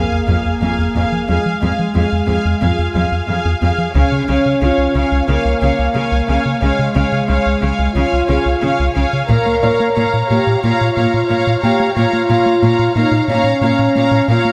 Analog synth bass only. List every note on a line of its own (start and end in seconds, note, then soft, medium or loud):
0.12 0.22 F2 soft
0.28 0.39 F2 medium
0.45 0.55 F2 soft
0.62 0.72 F3 soft
0.79 0.89 F2 medium
0.95 1.05 F2 medium
1.12 1.22 F3 soft
1.29 1.39 F2 medium
1.46 1.56 F3 soft
1.63 1.73 F2 medium
1.79 1.89 F3 medium
1.96 2.06 F2 medium
2.12 2.22 F2 soft
2.29 2.39 F2 medium
2.45 2.55 F2 medium
2.62 2.72 F2 medium
2.79 2.89 F2 soft
2.96 3.06 F2 medium
3.12 3.22 F2 soft
3.29 3.39 F3 soft
3.45 3.55 F2 medium
3.62 3.72 F2 soft
3.78 3.88 F3 soft
3.95 4.05 C#2 medium
4.12 4.22 C#3 soft
4.29 4.39 C#2 soft
4.46 4.56 C#3 soft
4.62 4.72 C#2 medium
4.78 4.88 C#2 soft
4.95 5.05 C#2 soft
5.12 5.22 C#2 medium
5.28 5.38 C#2 medium
5.45 5.55 C#2 medium
5.62 5.72 C#2 medium
5.79 5.89 C#2 soft
5.95 6.05 C#3 soft
6.12 6.22 C#2 medium
6.29 6.39 C#2 soft
6.46 6.56 C#3 soft
6.62 6.72 C#2 medium
6.79 6.89 C#3 medium
6.96 7.05 C#2 medium
7.12 7.22 C#3 medium
7.29 7.39 C#2 medium
7.46 7.56 C#2 soft
7.63 7.73 C#2 medium
7.79 7.89 C#2 medium
7.95 8.05 C#2 medium
8.13 8.23 C#2 medium
8.29 8.39 C#2 medium
8.46 8.56 C#2 soft
8.63 8.73 C#3 soft
8.80 8.89 C#2 medium
8.96 9.06 C#2 medium
9.13 9.23 C#3 soft
9.30 9.39 A#2 medium
9.46 9.56 A#3 medium
9.63 9.73 A#2 medium
9.80 9.90 A#3 medium
9.97 10.07 A#2 medium
10.14 10.23 A#2 medium
10.30 10.40 A#2 medium
10.47 10.57 A#2 medium
10.64 10.73 A#2 medium
10.81 10.90 A#2 soft
10.97 11.06 A#2 medium
11.14 11.23 A#2 medium
11.30 11.40 A#3 soft
11.47 11.57 A#2 medium
11.63 11.73 A#2 soft
11.80 11.90 A#3 medium
11.97 12.06 A#2 medium
12.13 12.23 A#3 soft
12.30 12.39 A#2 medium
12.46 12.56 A#3 medium
12.63 12.72 A#2 medium
12.79 12.89 A#2 soft
12.96 13.06 A#2 medium
13.12 13.22 A#2 medium
13.28 13.38 A#2 medium
13.44 13.54 A#2 soft
13.61 13.72 A#2 medium
13.79 13.89 A#2 soft
13.96 14.06 A#3 medium
14.11 14.22 A#2 medium
14.28 14.38 A#2 medium
14.45 14.52 A#3 soft